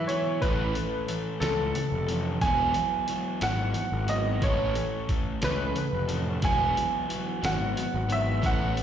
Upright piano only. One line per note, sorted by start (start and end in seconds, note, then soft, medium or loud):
0.07 0.42 C#5 medium
0.42 1.04 B4 medium
1.40 2.12 A4 medium
2.42 3.45 G#5 loud
3.43 4.11 F#5 medium
4.09 4.40 D#5 medium
4.43 5.05 C#5 medium
5.44 6.14 B4 medium
6.45 7.47 G#5 loud
7.45 8.13 F#5 medium
8.12 8.45 E5 medium
8.46 8.83 F#5 medium